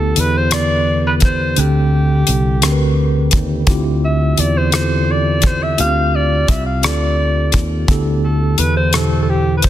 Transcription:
Already playing: fretless electric bass D2, tine electric piano D3 B3 E4 G4 A4, alto saxophone A4
0.16 fretless electric bass E2, alto saxophone B4, closed hi-hat
0.37 alto saxophone C5
0.51 tine electric piano D3 B3 E4 B4, alto saxophone D5, cross-stick, closed hi-hat
1.07 alto saxophone B4
1.20 kick, closed hi-hat
1.25 alto saxophone C5
1.56 fretless electric bass D2, tine electric piano D3 C4 G4 A4, alto saxophone G4, closed hi-hat
2.27 fretless electric bass C2, closed hi-hat
2.62 fretless electric bass D2, tine electric piano D3 C4 G4 A#4, cross-stick, closed hi-hat
2.72 tine electric piano B4
3.31 fretless electric bass D#2, kick, closed hi-hat
3.66 fretless electric bass D2, tine electric piano D3 C4 E4 F4 G4, kick, closed hi-hat
4.05 alto saxophone E5
4.38 fretless electric bass E2, alto saxophone D5, closed hi-hat
4.58 alto saxophone C5
4.71 tine electric piano D3 C4 E4 F4 G4, cross-stick, closed hi-hat
4.75 alto saxophone C5
4.81 tine electric piano A4
5.11 alto saxophone D5
5.42 kick, closed hi-hat
5.47 alto saxophone C5
5.63 alto saxophone E5
5.77 fretless electric bass D2, tine electric piano B3 F4 G4, alto saxophone F5, closed hi-hat
5.83 tine electric piano C4
6.15 alto saxophone D5
6.48 fretless electric bass C2, alto saxophone E5, kick, closed hi-hat
6.67 alto saxophone F5
6.82 fretless electric bass D2, tine electric piano C4 F4 A4, alto saxophone D5, cross-stick, closed hi-hat
7.52 fretless electric bass D#2, kick, closed hi-hat
7.88 fretless electric bass D2, tine electric piano D3 B3 E4 G4 A4, kick, closed hi-hat
8.24 alto saxophone A4
8.58 fretless electric bass E2, alto saxophone B4, closed hi-hat
8.77 alto saxophone C5
8.93 tine electric piano B2 D3 E4 G4, alto saxophone A4, cross-stick, closed hi-hat
8.97 tine electric piano C5
9.23 alto saxophone A4
9.30 alto saxophone G4
9.57 alto saxophone B4
9.62 alto saxophone C5, kick, closed hi-hat

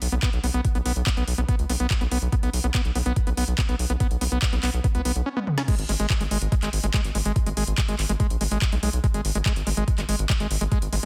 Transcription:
0.02 analog synth bass B1, open hi-hat
0.12 analog synth bass B1, acid bass B3, closed hi-hat
0.23 acid bass B3, kick, clap, closed hi-hat
0.33 analog synth bass B1, closed hi-hat
0.44 analog synth bass B1, acid bass B3, open hi-hat
0.54 analog synth bass B1, acid bass B3, closed hi-hat
0.65 kick, closed hi-hat
0.75 analog synth bass B1, acid bass B3, closed hi-hat
0.86 analog synth bass B1, acid bass B3, open hi-hat
0.96 analog synth bass B1, closed hi-hat
1.07 acid bass B3, kick, clap, closed hi-hat
1.17 analog synth bass B1, acid bass B3, closed hi-hat
1.28 analog synth bass B1, open hi-hat
1.38 analog synth bass B1, acid bass B3, closed hi-hat
1.49 acid bass B3, kick, closed hi-hat
1.59 analog synth bass C#2, closed hi-hat
1.69 analog synth bass B1, acid bass B3, open hi-hat
1.80 analog synth bass B1, acid bass B3, closed hi-hat
1.90 kick, clap, closed hi-hat
2.01 analog synth bass B1, acid bass B3, closed hi-hat
2.11 analog synth bass B1, acid bass B3, open hi-hat
2.22 analog synth bass B1, closed hi-hat
2.32 acid bass B3, kick, closed hi-hat
2.43 analog synth bass B1, acid bass B3, closed hi-hat
2.53 analog synth bass B1, open hi-hat
2.64 analog synth bass B1, acid bass B3, closed hi-hat
2.74 acid bass B3, kick, clap, closed hi-hat
2.85 analog synth bass B1, closed hi-hat
2.95 analog synth bass B1, acid bass B3, open hi-hat
3.06 analog synth bass B1, acid bass B3, closed hi-hat
3.16 kick, closed hi-hat
3.27 analog synth bass B1, acid bass B3, closed hi-hat
3.37 analog synth bass B1, acid bass B3, open hi-hat
3.48 analog synth bass B1, closed hi-hat
3.58 acid bass B3, kick, clap, closed hi-hat
3.69 analog synth bass B1, acid bass B3, closed hi-hat
3.79 analog synth bass B1, open hi-hat
3.90 analog synth bass B1, acid bass B3, closed hi-hat
4.00 acid bass B3, kick, closed hi-hat
4.11 analog synth bass B1, closed hi-hat
4.21 analog synth bass B1, acid bass B3, open hi-hat
4.32 analog synth bass B1, acid bass B3, closed hi-hat
4.42 kick, clap, closed hi-hat
4.53 analog synth bass B1, acid bass B3, closed hi-hat
4.63 analog synth bass B1, acid bass B3, clap, open hi-hat
4.74 analog synth bass B1, closed hi-hat
4.84 acid bass B3, kick, closed hi-hat
4.95 analog synth bass C#2, acid bass B3, closed hi-hat
5.05 analog synth bass B1, acid bass B3, open hi-hat
5.16 analog synth bass B1, closed hi-hat
5.26 acid bass C#4
5.37 acid bass B3, high tom
5.47 mid tom
5.58 acid bass C#4, snare
5.68 acid bass G#3, kick, closed hi-hat, crash
5.79 analog synth bass G#1, closed hi-hat
5.89 analog synth bass G#1, acid bass G#3, open hi-hat
6.00 analog synth bass G#1, acid bass G#3, closed hi-hat
6.10 kick, clap, closed hi-hat
6.21 analog synth bass G#1, acid bass G#3, closed hi-hat
6.31 analog synth bass G#1, acid bass G#3, open hi-hat
6.42 analog synth bass G#1, closed hi-hat
6.52 acid bass G#3, kick, closed hi-hat
6.63 analog synth bass G#1, acid bass G#3, clap, closed hi-hat
6.73 analog synth bass G#1, open hi-hat
6.84 analog synth bass G#1, acid bass G#3, closed hi-hat
6.94 acid bass G#3, kick, clap, closed hi-hat
7.04 analog synth bass G#1, closed hi-hat
7.15 analog synth bass G#1, acid bass G#3, open hi-hat
7.25 analog synth bass G#1, acid bass G#3, closed hi-hat
7.36 kick, closed hi-hat
7.46 analog synth bass G#1, acid bass G#3, closed hi-hat
7.57 analog synth bass G#1, acid bass G#3, open hi-hat
7.67 analog synth bass G#1, closed hi-hat
7.78 acid bass G#3, kick, clap, closed hi-hat
7.88 analog synth bass G#1, acid bass G#3, closed hi-hat
7.99 analog synth bass G#1, clap, open hi-hat
8.09 analog synth bass G#1, acid bass G#3, closed hi-hat
8.20 acid bass G#3, kick, closed hi-hat
8.30 analog synth bass A#1, closed hi-hat
8.41 analog synth bass G#1, acid bass G#3, open hi-hat
8.51 analog synth bass G#1, acid bass G#3, closed hi-hat
8.62 kick, clap, closed hi-hat
8.72 analog synth bass B1, acid bass G#3, closed hi-hat
8.83 analog synth bass B1, acid bass G#3, open hi-hat
8.93 analog synth bass B1, closed hi-hat
9.04 acid bass G#3, kick, closed hi-hat
9.14 analog synth bass G#1, acid bass G#3, closed hi-hat
9.25 analog synth bass G#1, open hi-hat
9.35 analog synth bass G#1, acid bass G#3, closed hi-hat
9.46 acid bass G#3, kick, clap, closed hi-hat
9.56 analog synth bass G#1, closed hi-hat
9.67 analog synth bass G#1, acid bass G#3, open hi-hat
9.77 analog synth bass G#1, acid bass G#3, closed hi-hat
9.88 kick, closed hi-hat
9.98 analog synth bass G#1, acid bass G#3, clap, closed hi-hat
10.09 analog synth bass G#1, acid bass G#3, open hi-hat
10.19 analog synth bass G#1, closed hi-hat
10.30 acid bass G#3, kick, clap, closed hi-hat
10.40 analog synth bass G#1, acid bass G#3, closed hi-hat
10.51 analog synth bass G#1, open hi-hat
10.61 analog synth bass G#1, acid bass G#3, closed hi-hat
10.72 acid bass G#3, kick, closed hi-hat
10.82 analog synth bass G#1, closed hi-hat
10.93 analog synth bass G#1, acid bass G#3, open hi-hat

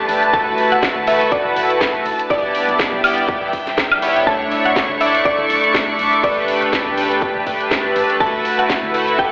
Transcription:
Already playing: analog polysynth A3 D4 G4 B4, ambient pad A3 D4 G4 B4, string section D4 B4 G5 A5
0.09 fm bass A1, open hi-hat
0.23 closed hi-hat
0.33 fm bass G1, analog polysynth E4 F#4 B4, ambient pad E4 F#4 B4, string section E4, synth pluck A5, kick, closed hi-hat
0.58 open hi-hat
0.72 fm bass D1, synth pluck F#5, closed hi-hat
0.83 kick, snare, closed hi-hat
0.93 fm bass D2, string section F#5
1.07 analog polysynth A3 E4 F#4 B4, synth pluck E5, open hi-hat
1.21 closed hi-hat
1.32 synth pluck D5, kick, closed hi-hat
1.46 fm bass D1
1.56 fm bass G1, open hi-hat
1.70 closed hi-hat
1.81 kick, snare, closed hi-hat
2.06 fm bass E1, ambient pad G3 D4, string section D4, open hi-hat
2.19 closed hi-hat
2.30 fm bass E1, analog polysynth B3 E4 G4 D5, synth pluck D5, kick, closed hi-hat
2.52 string section E5, open hi-hat
2.69 fm bass B1, closed hi-hat
2.79 kick, snare, closed hi-hat
2.93 fm bass B1
3.02 analog polysynth B3 E4 G4 D5, string section G5, open hi-hat, high woodblock
3.18 closed hi-hat
3.29 kick, closed hi-hat
3.42 fm bass D1
3.53 fm bass B1, kick, open hi-hat
3.67 snare, closed hi-hat
3.78 kick, snare, closed hi-hat
3.92 high woodblock
4.02 analog polysynth B3 E4 G4 C#5, open hi-hat
4.16 closed hi-hat
4.26 fm bass B1, analog polysynth A3 D4 E4 C#5, ambient pad A3 C#6, synth pluck A5, kick, closed hi-hat
4.35 string section C#6
4.52 open hi-hat
4.64 fm bass F#1, synth pluck F#5, string section A5, closed hi-hat
4.76 kick, snare, closed hi-hat
4.90 fm bass F#1
5.00 analog polysynth A3 D4 E4 D5, synth pluck E5, open hi-hat
5.15 closed hi-hat
5.25 synth pluck D5, kick, closed hi-hat
5.39 fm bass F#1
5.50 fm bass B1, open hi-hat
5.64 closed hi-hat
5.74 kick, snare, closed hi-hat
5.99 fm bass B1, open hi-hat
6.13 closed hi-hat
6.23 fm bass A1, analog polysynth A3 D4 G4 B4, ambient pad G4 B4, synth pluck D5, kick, closed hi-hat
6.30 string section B4
6.48 open hi-hat
6.53 string section G5
6.62 fm bass E1, closed hi-hat
6.73 kick, snare, closed hi-hat
6.87 fm bass E2
6.97 analog polysynth A3 D4 G4 B4, open hi-hat
7.11 closed hi-hat
7.22 kick, closed hi-hat
7.36 fm bass E1
7.46 fm bass A1, analog polysynth A3 D4 G4 B4, kick, open hi-hat
7.61 closed hi-hat
7.71 kick, snare, closed hi-hat
7.96 fm bass A1, open hi-hat
8.10 closed hi-hat
8.20 fm bass G1, analog polysynth A3 E4 F#4 B4, string section E4, ambient pad E4 F#4 B4, synth pluck A5, kick, closed hi-hat
8.45 open hi-hat
8.59 fm bass D1, synth pluck F#5, closed hi-hat
8.70 kick, snare, closed hi-hat
8.84 fm bass D2, string section F#5
8.94 analog polysynth A3 E4 F#4 B4, open hi-hat
9.08 closed hi-hat
9.19 synth pluck G5, kick, closed hi-hat

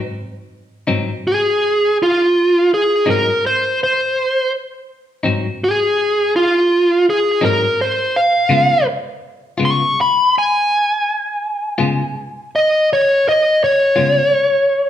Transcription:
0.87 clean electric guitar G#2 F#3 C4 D#4
1.27 lead electric guitar G#4
2.03 lead electric guitar F4
2.74 lead electric guitar G#4
3.06 clean electric guitar G#2 F#3 C4 D#4
3.10 lead electric guitar A#4
3.47 lead electric guitar C5
3.83 lead electric guitar C5
5.23 clean electric guitar G#2 F#3 C4 D#4
5.64 lead electric guitar G#4
6.36 lead electric guitar F4
7.10 lead electric guitar G#4
7.41 clean electric guitar G#2 F#3 C4 D#4, lead electric guitar A#4
7.81 lead electric guitar C5
8.16 lead electric guitar F5
8.49 clean electric guitar C#3 G#3 B3 F4
9.58 clean electric guitar C#3 G#3 B3 F4
9.65 lead electric guitar C#6
10.01 lead electric guitar B5
10.38 lead electric guitar G#5
11.78 clean electric guitar C#3 G#3 B3 F4
12.56 lead electric guitar D#5
12.93 lead electric guitar C#5
13.29 lead electric guitar D#5
13.64 lead electric guitar C#5
13.96 clean electric guitar C#3 G#3 B3 F4

